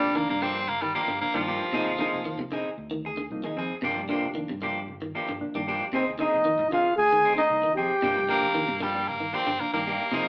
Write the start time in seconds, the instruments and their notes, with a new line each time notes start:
Already playing: reed electric piano C3 F3 A#3 D4, baritone saxophone G3, trombone D4, trumpet D5
0.04 fingered electric bass F1
0.15 clean electric guitar D#3, baritone saxophone A#3
0.29 fingered electric bass G2, clean electric guitar C3, baritone saxophone A#3
0.42 clean electric guitar D3 F3 A#3 D4 G4, baritone saxophone C4
0.68 fingered electric bass G1, baritone saxophone A#3
0.82 clean electric guitar D#3, baritone saxophone G3
0.94 clean electric guitar F3 A#3 D4 G4, baritone saxophone A#3
1.08 fingered electric bass G1, clean electric guitar D3
1.21 reed electric piano C3 F3 A#3 D4, baritone saxophone A#3
1.34 fingered electric bass G2, clean electric guitar D#3 A#3 D4 G4, baritone saxophone F3
1.47 clean electric guitar F3 A#3 D4 G4
1.60 muted fingered electric bass stroke
1.72 fingered electric bass F1, clean electric guitar C3 C4 D#4 G#4, reed electric piano C3 F3 A#3 D#4
1.86 fingered electric bass D#2
1.99 reed electric piano C3 F3 A#3 D#4, clean electric guitar D3 C4 D#4 G#4
2.13 fingered electric bass F1
2.25 clean electric guitar D#3
2.39 fingered electric bass F1, clean electric guitar C3
2.52 clean electric guitar D3 C4 D#4 G#4
2.78 fingered electric bass D2
2.91 clean electric guitar D#3
3.05 clean electric guitar G#4, muted clean electric guitar stroke
3.17 clean electric guitar D3
3.30 fingered electric bass C2, reed electric piano C3 F3 A#3 D#4
3.44 clean electric guitar D#3 D#4 G#4
3.57 fingered electric bass F2, clean electric guitar C4 G#4
3.71 muted fingered electric bass stroke
3.82 fingered electric bass G1, clean electric guitar C3 F3 A#3 D4 G4, reed electric piano C3 F3 A#3 D4
3.97 fingered electric bass G2
4.09 reed electric piano C3 F3 A#3 D4, clean electric guitar D3 F3 A#3 D4 G4
4.23 fingered electric bass F1
4.35 clean electric guitar D#3
4.49 fingered electric bass G2, clean electric guitar C3
4.62 clean electric guitar D3 F3 A#3 D4 G4
4.88 fingered electric bass G1
5.02 clean electric guitar D#3
5.15 clean electric guitar F3 A#3 D4 G4
5.29 fingered electric bass G1, clean electric guitar D3
5.40 reed electric piano C3 F3 A#3 D4
5.55 fingered electric bass G2, clean electric guitar D#3 A#3 D4 G4
5.67 clean electric guitar F3 A#3 D4 G4
5.81 muted fingered electric bass stroke
5.92 fingered electric bass F1, clean electric guitar C3 C4 D#4 G#4, reed electric piano C3 F3 A#3 D#4, trombone C4, trumpet C5
6.07 fingered electric bass D#2
6.19 reed electric piano C3 F3 A#3 D#4, clean electric guitar D3 C4 D#4 G#4, trombone D#4, trumpet D#5
6.34 fingered electric bass F1
6.45 clean electric guitar D#3
6.59 fingered electric bass F1, clean electric guitar G#2
6.71 clean electric guitar D3 C4 G#4, trombone F4, trumpet F5, muted clean electric guitar stroke
6.97 fingered electric bass D2, trombone G#4, trumpet G#5
7.13 clean electric guitar D#3
7.25 clean electric guitar C4 D#4 G#4
7.37 clean electric guitar D3, trombone D#4, trumpet D#5
7.50 fingered electric bass C2, reed electric piano C3 F3 A#3 D#4
7.63 clean electric guitar D#3
7.75 fingered electric bass F2, clean electric guitar C4 G#4, trombone G4, trumpet G5, muted clean electric guitar stroke
7.90 muted fingered electric bass stroke
8.02 fingered electric bass G1, clean electric guitar C3 F3 A#3 D4 G4, reed electric piano C3 F3 A#3 D4
8.17 fingered electric bass G2
8.29 reed electric piano C3 F3 A#3 D4, clean electric guitar D3 F3 A#3 D4 G4, baritone saxophone A#3
8.42 fingered electric bass F1
8.55 clean electric guitar D#3
8.68 fingered electric bass G2, clean electric guitar C3
8.80 clean electric guitar D3 F3 A#3 D4 G4, baritone saxophone G3
8.94 clean electric guitar A#3 D4 G4
9.08 fingered electric bass G1, baritone saxophone A#3
9.20 clean electric guitar D#3
9.33 clean electric guitar F3 A#3 D4 G4, baritone saxophone C4
9.47 fingered electric bass G1, clean electric guitar D3
9.60 reed electric piano C3 F3 A#3 D4, baritone saxophone A#3
9.73 fingered electric bass G2, clean electric guitar D#3 A#3 D4 G4, baritone saxophone A#3
9.86 clean electric guitar A#3 D4 G4
10.00 muted fingered electric bass stroke
10.11 fingered electric bass F1, reed electric piano C3 F3 A#3 D#4, clean electric guitar C3 F3 C4 D#4 G#4